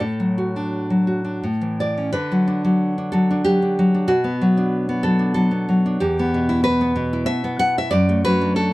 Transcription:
0.00 A2 A4
0.20 F#3
0.38 F#4
0.56 D4
0.90 F#3
1.07 F#4
1.25 D4
1.43 A2
1.61 E3
1.80 E4 D5
1.98 C#4
2.13 D3 B4
2.32 F#3
2.48 D4
2.65 F#3
2.98 D4
3.12 F#3 A4
3.31 D4
3.45 F#3 G4
3.62 D4
3.79 F#3
3.94 D4
4.08 B2 F#4
4.24 B3
4.42 F#3
4.57 D4
4.89 B3
5.03 F#3 A4
5.19 D4
5.34 F#3 A4
5.51 B3
5.69 F#3
5.86 D4
6.00 E2 G4
6.19 B3
6.34 B2
6.49 E4
6.64 B4
6.81 B3
6.96 B2
7.13 E4
7.26 B2 E5
7.44 B3
7.59 B2 F#5
7.78 E4 E5
7.91 F#2 D5
8.09 A3
8.25 F#3 B4
8.41 D4
8.56 A4

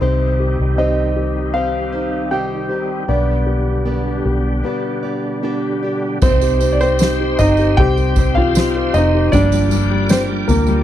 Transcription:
Already playing: D#3 C4 D#4
0.01 C2 C3 G3 C4 D#4 G4 C5
0.40 G4
0.60 C2
0.78 C3 C4 D#4 G4 C5 D#5
1.16 G4
1.54 C4 D#4 G4 C5 F5
1.92 D#4 G4 C5
2.31 C3 C4 D#4 G4 C5 G5
2.69 D#4 G4 C5
3.08 B1 B2 D3 B3 D4 G4 D5
3.46 G4
3.85 B3 D4 G4 B4 D5
4.25 B1 G4
4.63 B3 D4 G4 D5
5.03 D4 G4 D5
5.43 B3 D4 G4 D5
5.83 D4 G4 D5
6.22 C2 C3 G3 C4 D#4 G4 C5 G5 C6, kick, floor tom, crash, tambourine
6.41 G4, tambourine
6.60 C4 D#4 G4, tambourine
6.73 D5
6.81 C4 G4 C5, tambourine
6.99 G3 C4 D#4 G4, snare, tambourine
7.21 G4
7.39 G1 C4 D#4 D#5, floor tom, tambourine
7.57 G4, tambourine
7.77 C2 C4 G4 G5, kick, floor tom
7.97 G4, tambourine
8.16 C4 D#4 G4, kick, tambourine
8.35 F4 G4 F5, floor tom
8.55 G3 C4 D#4 G4, snare, tambourine
8.76 G4
8.93 F1 C4 D#4 G4 D#5, tambourine
9.15 G4
9.32 G1 G2 D3 F3 G3 A#3 D4 F4 G4 A#4 D5 D6, floor tom, tambourine
9.52 G3, tambourine
9.70 F3 G3 A#3 D4 G4, tambourine
9.91 G3
10.09 F3 G3 A#3 C4 D4 G4 C5, snare, tambourine
10.30 G3
10.48 D2 G3 A#3 A#4, floor tom, tambourine
10.67 G3, tambourine

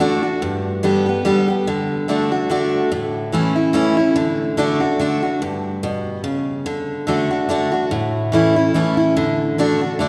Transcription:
0.00 D3 A3 D4 F#4
0.23 D4 F#4
0.42 G2
0.83 D3 G3 B3 G4
1.06 B3 G4
1.25 D3 G3 B3 G4
1.48 B3 G4
1.67 D3
2.08 D3 A3 D4 F#4
2.32 D4 F#4
2.50 D3 A3 D4 F#4
2.92 A2
3.32 E3 A3 C#4 E4
3.56 C#4 E4
3.73 E3 A3 C#4 E4
3.97 C#4 E4
4.16 D3
4.57 D3 A3 D4 F#4
4.80 D4 F#4
4.99 D3 A3 D4 F#4
5.23 D4 F#4
5.42 G2
5.83 B2
6.24 C#3
6.66 D3
7.07 D3 A3 D4 F#4
7.31 D4 F#4
7.49 D3 A3 D4 F#4
7.72 D4 F#4
7.91 A2
8.32 E3 A3 C#4 E4
8.56 C#4 E4
8.74 E3 A3 C#4 E4
8.97 C#4 E4
9.17 D3
9.58 D3 A3 D4 F#4
9.81 D4 F#4
9.99 D3 A3 D4 F#4

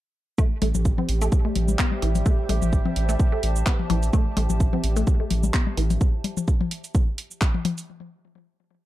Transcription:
0.38 G3 A3 G4, kick, shaker
0.62 A1 A3, open hi-hat, low conga
0.71 A1 C5, high tom, shaker
0.85 E5, kick, shaker
0.98 C4, high tom
1.09 A1, open hi-hat
1.22 A3, open hi-hat, shaker
1.32 kick, shaker
1.45 A3
1.55 A1, open hi-hat, high tom
1.68 low conga, shaker
1.79 B3, kick, clap, shaker
1.92 low conga
2.02 A1 E3, open hi-hat
2.15 open hi-hat, high tom, shaker
2.21 A5
2.26 A3, kick, shaker
2.49 A1 A3, open hi-hat, low conga
2.62 A1, high tom, shaker
2.73 kick, shaker
2.85 C4, high tom
2.96 A1, open hi-hat
3.09 A3, open hi-hat, shaker
3.20 kick, shaker
3.32 A3
3.43 A1, open hi-hat
3.56 shaker
3.66 B3, kick, clap, shaker
3.79 high tom
3.90 A1 E3, open hi-hat, high tom
4.03 open hi-hat, shaker
4.13 A3, kick, shaker
4.37 A1 A3, open hi-hat, low conga
4.50 A1, high tom, shaker
4.60 kick, shaker
4.73 C4, high tom
4.84 A1, open hi-hat
4.96 A3, open hi-hat, shaker
5.07 kick, shaker
5.20 A3
5.30 A1, open hi-hat, high tom
5.43 low conga, shaker
5.54 B3, kick, clap, shaker
5.67 low conga
5.77 A1 E3, open hi-hat
5.90 open hi-hat, high tom, shaker
6.01 kick, shaker
6.24 open hi-hat, low conga
6.37 high tom, shaker
6.48 kick, shaker
6.61 high tom
6.71 open hi-hat
6.84 open hi-hat, shaker
6.95 kick, shaker
7.18 open hi-hat
7.31 shaker
7.41 kick, clap, shaker
7.54 high tom
7.65 open hi-hat, high tom
7.78 open hi-hat, shaker

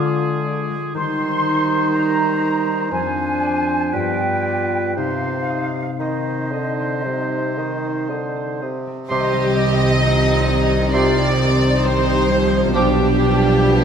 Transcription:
Already playing: D3 G#3 D4 F4 G#4 C5 D5
0.00 F5
0.23 G#4
0.46 D5
0.70 G#3
0.94 D#3 G3 D#4 C5 C6
1.19 C4
1.43 C5
1.68 G4
1.91 G5 A#5
2.16 C5
2.41 G4
2.66 C4
2.90 F2 F3 C4 D4 C5 G#5
3.16 C4
3.42 D5
3.67 C5
3.92 G2 G3 B3 F4 B4 G5
4.20 B3
4.45 D5
4.71 B4
4.96 C3 C4 D#4 C5 F5
5.24 C4
5.50 D#5
5.76 C5
5.99 D#3 D#4 C5 D#5
6.26 C5
6.52 D3 D#5
6.79 C4
7.04 C3 G3
7.32 C4
7.58 D#3 D#5
7.84 C5
8.09 D3 D#5
8.36 C5
8.62 C3 D#5
8.87 C4
9.09 C2 C3 D#3 G3 C4 G4 D#5 C6
9.33 G3
9.57 C4
9.80 G4
10.01 F3 D#4 C5
10.25 G4
10.47 D#3 G5
10.71 C6
10.92 C3 C4 F4 G4 D5 G5 C6
11.17 C5
11.39 D#4 G4
11.62 C4
11.84 D#3 G3 C4 G4 C5
12.07 C4
12.30 F3 G3
12.52 C4
12.74 B1 B2 F3 G3 D4 G4 D6
12.97 B3
13.19 D4
13.40 F4
13.62 B3 D4 G4

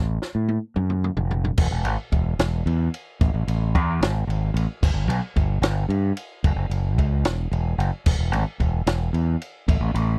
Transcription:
Already playing: A1
0.22 snare
0.35 A2
0.49 high tom
0.76 F#2, mid tom
0.90 mid tom
1.04 mid tom
1.17 F1, floor tom
1.31 floor tom
1.45 floor tom
1.58 E1, kick, crash
1.71 E1
1.84 G#1, ride
2.12 E1, kick, ride
2.39 E1, snare, ride
2.66 E2, ride
2.94 ride
3.21 A1, kick, ride
3.34 A1
3.48 A1, ride
3.75 E2, kick, ride
4.01 G#1, snare, ride
4.27 G#1, ride
4.54 A1, ride
4.83 G1, kick, crash
4.94 G1
5.08 B1, ride
5.36 G1, kick, ride
5.62 G1, snare, ride
5.89 G2, ride
6.17 ride
6.44 F#1, kick, ride
6.56 F#1
6.70 F#1, ride
6.98 C#2, kick, ride
7.24 E1, snare, ride
7.52 E1, ride
7.78 F#1, ride
8.06 E1, kick, crash
8.19 E1
8.32 G#1, ride
8.60 E1, kick, ride
8.87 E1, snare, ride
9.13 E2, ride
9.42 ride
9.68 A1, kick, ride
9.80 A1
9.94 A1, ride

